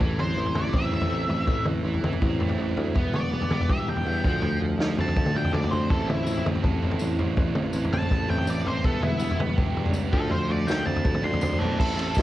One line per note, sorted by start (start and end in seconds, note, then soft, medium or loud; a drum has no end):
0.00 0.16 A1 medium
0.00 0.38 E3 medium
0.00 0.17 C4 medium
0.00 0.18 E4 medium
0.00 0.18 A4 medium
0.00 kick loud
0.00 floor tom medium
0.18 0.34 A1 medium
0.18 0.36 C4 medium
0.18 0.36 E4 medium
0.18 0.56 C5 medium
0.18 mid tom medium
0.37 0.53 A1 medium
0.37 0.56 E3 medium
0.37 0.54 C4 medium
0.37 0.54 E4 medium
0.46 floor tom medium
0.55 0.71 A1 medium
0.55 1.12 E3 medium
0.55 0.73 C4 medium
0.55 0.73 E4 medium
0.55 0.75 D5 medium
0.55 floor tom medium
0.55 mid tom medium
0.65 floor tom medium
0.73 0.89 A1 medium
0.73 0.91 C4 medium
0.73 0.91 E4 medium
0.73 0.93 E5 loud
0.73 kick loud
0.73 floor tom medium
0.92 1.09 A1 medium
0.92 1.85 A3 medium
0.92 1.10 C4 medium
0.92 1.10 E4 medium
0.92 1.65 E5 medium
0.92 floor tom medium
1.01 floor tom medium
1.11 1.27 A1 medium
1.11 1.30 E3 medium
1.11 1.27 C4 medium
1.11 1.27 E4 medium
1.28 1.44 A1 medium
1.28 1.46 E3 medium
1.28 1.46 C4 medium
1.28 1.46 E4 medium
1.28 floor tom medium
1.47 1.63 A1 medium
1.47 1.83 E3 medium
1.47 1.65 C4 medium
1.47 1.65 E4 medium
1.47 kick loud
1.47 floor tom medium
1.65 1.82 A1 medium
1.65 1.84 C4 medium
1.65 1.84 E4 medium
1.65 mid tom medium
1.83 2.00 A1 medium
1.83 2.02 E3 medium
1.83 2.02 C4 medium
1.83 2.02 E4 medium
1.94 floor tom medium
2.01 2.18 A1 medium
2.01 2.59 E3 medium
2.01 2.20 C4 medium
2.01 floor tom medium
2.01 mid tom medium
2.05 2.21 E4 medium
2.13 floor tom medium
2.21 2.38 A1 medium
2.21 2.38 C4 medium
2.21 2.39 E4 medium
2.21 kick loud
2.21 floor tom medium
2.39 2.55 A1 medium
2.39 2.96 A3 medium
2.39 2.57 C4 medium
2.39 2.57 E4 medium
2.39 floor tom medium
2.49 floor tom medium
2.58 2.74 A1 medium
2.58 2.78 E3 medium
2.58 2.75 C4 medium
2.58 2.75 E4 medium
2.77 2.93 D2 medium
2.77 2.97 E3 medium
2.77 2.94 C4 medium
2.77 2.94 E4 medium
2.77 floor tom medium
2.94 3.11 E1 medium
2.94 3.12 G3 medium
2.94 3.13 B3 loud
2.94 3.13 E4 medium
2.94 kick loud
2.94 floor tom medium
3.14 3.29 E1 medium
3.14 3.31 G3 medium
3.14 3.31 B3 medium
3.14 3.51 D5 medium
3.14 mid tom medium
3.31 3.47 E1 medium
3.31 3.49 G3 medium
3.31 3.50 B3 medium
3.41 floor tom medium
3.49 3.65 E1 medium
3.49 3.68 G3 medium
3.49 3.68 B3 medium
3.49 3.70 D5 medium
3.49 floor tom medium
3.49 mid tom medium
3.60 floor tom medium
3.69 3.85 E1 medium
3.69 3.87 G3 medium
3.69 3.87 B3 medium
3.69 4.25 G4 medium
3.69 3.88 E5 medium
3.69 kick loud
3.69 floor tom medium
3.87 4.03 E1 medium
3.87 4.05 G3 medium
3.87 4.05 B3 medium
3.87 4.25 D4 medium
3.87 4.60 G5 medium
3.87 floor tom medium
3.96 floor tom medium
4.06 4.21 E2 medium
4.06 4.23 G3 medium
4.06 4.23 B3 medium
4.24 4.40 D2 medium
4.24 4.42 F3 medium
4.24 4.42 A3 medium
4.24 4.42 D4 loud
4.24 kick medium
4.24 floor tom medium
4.42 4.58 D2 medium
4.42 4.60 F3 medium
4.42 4.60 A3 medium
4.42 floor tom medium
4.61 4.77 D2 medium
4.61 4.78 F3 medium
4.61 4.78 A3 medium
4.78 4.94 D2 medium
4.78 4.97 F3 medium
4.78 4.97 A3 medium
4.78 snare medium
4.97 5.13 D2 medium
4.97 5.15 F3 medium
4.97 5.15 A3 medium
4.97 5.72 C4 medium
4.97 5.35 A5 medium
4.97 floor tom medium
5.08 floor tom medium
5.16 5.32 D2 medium
5.16 5.33 F3 medium
5.16 5.33 A3 medium
5.16 6.62 A4 medium
5.16 kick loud
5.16 floor tom medium
5.26 mid tom medium
5.35 5.50 D2 medium
5.35 5.52 F3 medium
5.35 5.52 A3 medium
5.35 5.90 D4 medium
5.35 5.54 G5 medium
5.35 floor tom medium
5.44 floor tom medium
5.52 5.68 D2 medium
5.52 5.70 F3 medium
5.52 5.70 A3 medium
5.52 5.71 D5 medium
5.52 floor tom medium
5.52 mid tom medium
5.64 floor tom medium
5.71 5.87 D2 medium
5.71 5.88 F3 medium
5.71 5.89 A3 medium
5.71 6.44 C4 medium
5.71 5.89 C5 medium
5.71 floor tom medium
5.90 6.06 A1 medium
5.90 6.09 E3 medium
5.90 6.09 C4 medium
5.90 6.09 E4 medium
5.90 6.08 A4 medium
5.90 kick loud
5.90 floor tom medium
6.08 6.24 A1 medium
6.08 6.26 E3 medium
6.08 6.26 C4 medium
6.08 6.44 E4 medium
6.08 mid tom medium
6.25 6.41 A1 medium
6.25 6.45 E3 medium
6.25 tambourine medium
6.30 6.45 C4 medium
6.37 floor tom medium
6.46 6.61 A1 medium
6.46 6.63 E3 medium
6.46 6.63 C4 medium
6.46 floor tom medium
6.46 mid tom medium
6.55 floor tom medium
6.63 6.79 A1 medium
6.63 6.80 E3 medium
6.63 6.81 C4 medium
6.63 7.55 A4 medium
6.63 kick loud
6.63 floor tom medium
6.81 6.98 A1 medium
6.81 6.99 E3 medium
6.81 7.00 C4 medium
6.81 8.30 E4 medium
6.81 floor tom medium
6.91 floor tom medium
6.99 7.16 A1 medium
6.99 7.18 E3 medium
6.99 7.18 C4 medium
6.99 tambourine medium
7.19 7.34 A1 medium
7.19 7.36 E3 medium
7.19 7.37 C4 medium
7.19 floor tom medium
7.37 7.53 A1 medium
7.37 7.54 E3 medium
7.37 7.54 C4 medium
7.37 kick loud
7.37 floor tom medium
7.55 7.71 A1 medium
7.55 7.73 E3 medium
7.55 7.73 C4 medium
7.55 mid tom medium
7.73 7.89 A1 medium
7.73 7.91 E3 medium
7.73 7.91 C4 medium
7.73 tambourine medium
7.84 floor tom medium
7.92 8.08 A1 medium
7.92 8.10 E3 medium
7.92 8.10 C4 medium
7.92 8.29 A5 loud
7.92 floor tom medium
7.92 mid tom medium
8.02 floor tom medium
8.11 8.27 A1 medium
8.11 8.28 E3 medium
8.11 8.28 C4 medium
8.11 8.85 A4 medium
8.11 kick loud
8.11 floor tom medium
8.29 8.44 A1 medium
8.29 8.46 E3 medium
8.29 8.46 C4 medium
8.29 8.85 E4 medium
8.29 8.48 G5 medium
8.29 floor tom medium
8.38 floor tom medium
8.46 8.62 A1 medium
8.46 8.64 E3 medium
8.46 8.65 C4 medium
8.46 tambourine medium
8.50 8.67 D5 medium
8.65 8.81 A1 medium
8.65 8.83 E3 medium
8.65 8.83 C4 medium
8.65 8.85 C5 medium
8.65 floor tom medium
8.84 9.00 E1 medium
8.84 9.02 G3 medium
8.84 9.03 B3 loud
8.84 9.03 E4 loud
8.84 9.02 A4 medium
8.84 kick loud
8.84 floor tom medium
9.01 9.17 E1 medium
9.01 9.20 G3 medium
9.01 9.20 B3 medium
9.01 9.39 E4 medium
9.01 mid tom medium
9.20 9.36 E1 medium
9.20 9.38 G3 medium
9.20 9.39 B3 medium
9.20 tambourine loud
9.31 floor tom medium
9.37 9.54 E1 medium
9.37 9.56 G3 medium
9.37 9.57 B3 medium
9.37 floor tom medium
9.37 mid tom medium
9.49 floor tom medium
9.57 9.72 E1 medium
9.57 9.75 G3 medium
9.57 9.76 B3 medium
9.57 10.13 G4 medium
9.57 kick loud
9.57 floor tom medium
9.73 9.90 E1 medium
9.73 9.93 G3 medium
9.73 10.13 D4 medium
9.73 floor tom medium
9.77 9.94 B3 medium
9.86 floor tom medium
9.90 10.08 C#2 medium
9.90 tambourine medium
9.95 10.12 G3 medium
9.95 10.12 B3 medium
10.13 10.28 D2 medium
10.13 10.31 F3 medium
10.13 10.31 A3 loud
10.13 10.31 D4 loud
10.13 10.31 A4 medium
10.13 kick loud
10.13 floor tom medium
10.30 10.46 D2 medium
10.30 10.48 F3 medium
10.30 10.49 A3 medium
10.30 10.49 C5 medium
10.30 floor tom medium
10.49 10.65 D2 medium
10.49 10.66 F3 medium
10.49 10.67 A3 medium
10.49 10.68 D5 medium
10.67 10.83 D2 medium
10.67 10.85 F3 medium
10.67 10.86 A3 medium
10.67 10.86 G5 medium
10.67 snare medium
10.67 tambourine medium
10.85 11.02 D2 medium
10.85 11.04 F3 medium
10.85 11.04 A3 medium
10.85 11.58 C4 medium
10.85 11.22 A5 medium
10.85 floor tom medium
10.96 floor tom medium
11.04 11.20 D2 medium
11.04 11.22 F3 medium
11.04 11.22 A3 medium
11.04 11.78 A4 medium
11.04 kick loud
11.04 floor tom medium
11.14 mid tom medium
11.22 11.39 D2 medium
11.22 11.41 A3 medium
11.22 11.78 D4 medium
11.22 11.41 C6 medium
11.22 floor tom medium
11.26 11.41 F3 medium
11.33 floor tom medium
11.41 11.57 D2 medium
11.41 11.59 F3 medium
11.41 11.59 A3 medium
11.41 11.78 C6 loud
11.41 floor tom medium
11.41 mid tom medium
11.41 tambourine medium
11.53 floor tom medium
11.59 11.76 B1 medium
11.59 11.78 F3 medium
11.59 11.78 A3 medium
11.59 11.78 C4 medium
11.59 11.78 A4 medium
11.59 floor tom medium
11.78 11.95 A1 medium
11.78 11.96 E3 loud
11.78 11.99 C4 loud
11.78 11.99 E4 loud
11.78 12.22 A4 medium
11.78 11.99 A4 loud
11.78 kick loud
11.78 crash loud
11.96 12.13 A1 medium
11.96 12.15 E3 medium
11.96 12.17 C4 medium
11.96 12.18 E4 medium
11.96 12.18 A4 medium
11.96 ride medium
12.15 12.22 A1 loud
12.15 12.22 E3 medium
12.15 12.22 C4 medium
12.15 12.22 E4 medium
12.15 12.22 A4 medium
12.15 kick medium
12.15 ride medium
12.15 tambourine medium
12.19 snare loud